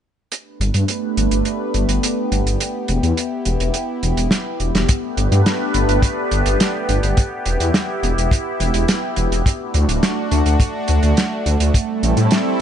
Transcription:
0.31 A3 B3 D4 G4 B4, closed hi-hat
0.60 G1, closed hi-hat
0.74 G2, closed hi-hat
0.88 closed hi-hat
1.17 G1, closed hi-hat
1.31 G1, closed hi-hat
1.45 closed hi-hat
1.74 G1, closed hi-hat
1.89 G1, closed hi-hat
2.03 closed hi-hat
2.32 G1, closed hi-hat
2.46 G1, closed hi-hat
2.60 E4, closed hi-hat
2.88 E1, closed hi-hat
3.03 E2, closed hi-hat
3.17 closed hi-hat
3.45 E1, closed hi-hat
3.60 E1, closed hi-hat
3.74 closed hi-hat
4.03 E1, closed hi-hat
4.17 E1, closed hi-hat
4.31 snare, closed hi-hat
4.60 E1, closed hi-hat
4.74 E1, snare, closed hi-hat
4.89 A3 B3 D4 G4 B4, kick, closed hi-hat
5.17 G1, closed hi-hat
5.32 G2, closed hi-hat
5.46 snare, closed hi-hat
5.74 G1, closed hi-hat
5.89 G1, closed hi-hat
6.02 kick, closed hi-hat
6.31 G1, closed hi-hat
6.46 G1, closed hi-hat
6.60 snare, closed hi-hat
6.89 G1, closed hi-hat
7.03 G1, closed hi-hat
7.17 E4, kick, closed hi-hat
7.46 E1, closed hi-hat
7.60 E2, closed hi-hat
7.74 snare, closed hi-hat
8.03 E1, closed hi-hat
8.17 E1, closed hi-hat
8.31 kick, closed hi-hat
8.60 E1, closed hi-hat
8.74 E1, closed hi-hat
8.88 snare, closed hi-hat
9.16 E1, closed hi-hat
9.32 E1, closed hi-hat
9.46 A3 D4 F#4, kick, closed hi-hat
9.74 D2, closed hi-hat
9.89 D1, closed hi-hat
10.03 snare, closed hi-hat
10.31 D2, closed hi-hat
10.46 D2, closed hi-hat
10.60 kick, closed hi-hat
10.88 D2, closed hi-hat
11.03 D2, closed hi-hat
11.17 snare, closed hi-hat
11.46 D2, closed hi-hat
11.60 D2, closed hi-hat
11.74 G3 C4 E4 A4, kick, closed hi-hat
12.03 A1, closed hi-hat
12.17 A2, closed hi-hat
12.31 snare, closed hi-hat

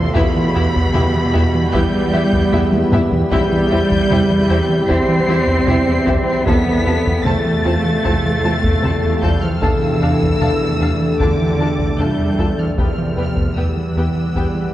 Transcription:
Already playing: C3 A3 F4 A4 F5 C6
0.14 E2 B2 G3 B3 E4 G4 E5 B5, taiko
0.37 E3
0.55 E2 B3 E4 G4 E5
0.75 E2, taiko
0.94 E2 B3 E4 G4 E5, taiko mid
1.15 E3
1.34 E2 B3 E4 G4 E5
1.55 E3
1.73 E2 G3 B3 E4 G4 E5 G6, taiko
1.94 E3
2.13 E3 B3 E4 G4 E5
2.33 E2, taiko
2.52 E2 B3 E4 G4 E5, taiko high
2.73 E2, taiko high
2.92 E2 B3 E4 G4 E5, taiko low-mid
3.11 E3, taiko low
3.31 E2 C3 G3 C4 E4 G4 E5 G6, taiko
3.52 E3
3.71 E2 C4 E4 G4 E5
3.91 E2, taiko
4.10 E2 C4 E4 G4 E5, taiko mid
4.30 E3
4.49 E2 C4 E4 G4 E5
4.69 E3
4.88 E2 C4 E4 G4 E5 C7, taiko
5.09 E3
5.28 E3 C4 E4 G4 E5
5.47 E2, taiko
5.67 E2 C4 E4 G4 E5, taiko mid
5.88 E2
6.06 E2 C4 E4 G4 E5, taiko
6.27 E3
6.46 E2 C3 A3 B3 F4 A4 F5 A5 B6, taiko
6.66 E3
6.86 E2 C3 F4 A4 A5
7.06 E2, taiko
7.25 E2 A3 C4 F4 A4 A5 A6, taiko mid
7.46 E3
7.65 E2 C4 F4 A4 A5
7.85 E3
8.04 E2 C4 F4 A4 A5, taiko
8.26 E3
8.43 E3 C4 F4 A4 A5
8.64 E2, taiko
8.83 E2 C4 F4 A4 A5, taiko mid
9.04 E2
9.22 E2 G3 C4 F4 A4 A5 G6, taiko
9.43 E3 F3 F6
9.61 E2 E3 D4 A4 D5 F5 A5 E6, taiko
9.83 E3
10.02 E2 D4 A4 F5 A5
10.22 E2, taiko
10.41 E2 D4 A4 F5 A5, taiko mid
10.61 E3
10.80 E2 D4 A4 F5 A5
11.02 E3
11.20 E2 D3 D4 F4 A4 A5 D6, taiko
11.40 E3
11.59 E3 D4 F4 A4 A5
11.79 E2, taiko
11.99 E2 G3 D4 F4 A4 A5 G6, taiko mid
12.19 E2
12.39 E2 D4 F4 A4 A5, taiko
12.58 E3 F3 F6
12.78 E2 F3 G3 B3 G4 B4 G5 F6, taiko
12.98 E3
13.17 E2 B3 G4 B4 G5
13.37 E2, taiko
13.56 E2 E3 B3 G4 B4 G5 E6
13.77 E3
13.96 E2 B3 G4 B4 G5
14.16 E3
14.35 E2 B3 G4 B4 G5, taiko
14.54 E3

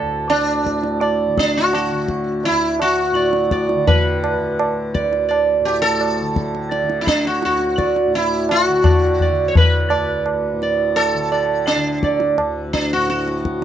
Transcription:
Already playing: A2 D3 A4
0.02 D2
0.30 D4, tabla na
0.63 A2, tabla ke
0.83 tabla te
1.01 D5, tabla na
1.26 D3
1.38 D4, tabla ke
1.57 F#4
1.73 F#4, tabla na
1.90 D3
2.08 tabla ke
2.44 E4, tabla tin
2.50 D2
2.80 F#4, tabla na
3.12 A2, tabla te
3.16 D5
3.33 tabla te
3.51 D5, tabla ke
3.69 tabla te
3.74 D3
3.87 B4, tabla tin, tabla ge
4.24 tabla na
4.35 D3
4.59 tabla na
4.94 D5, tabla ke
4.99 D2
5.13 tabla te
5.29 D5, tabla na
5.60 A2
5.65 G4, tabla na
5.82 A4
6.01 tabla na
6.20 D3
6.36 tabla ke
6.55 tabla te
6.71 D5, tabla te
6.83 D3
6.90 tabla te
7.01 E4
7.07 D4, tabla ke
7.25 F#4, tabla te
7.42 D2 F#4, tabla te
7.60 tabla te
7.78 D5, tabla ke
7.96 tabla te
8.07 A2
8.14 E4, tabla tin
8.49 F#4, tabla na
8.67 D3
8.84 D5, tabla na, tabla ge
9.20 D5, tabla ge
9.29 D3
9.48 C#5
9.55 B4, tabla tin, tabla ge
9.90 D2 D5, tabla na
10.26 tabla na
10.53 A2
10.62 D5, tabla te
10.96 A4, tabla na
11.14 D3
11.32 D5, tabla na
11.67 D4, tabla na
11.75 D3
12.03 D5, tabla ke
12.20 tabla te
12.37 D2, tabla na
12.73 D4, tabla ke
12.93 F#4
12.97 A2
13.10 F#4, tabla te
13.28 tabla te
13.45 tabla ke
13.59 D3

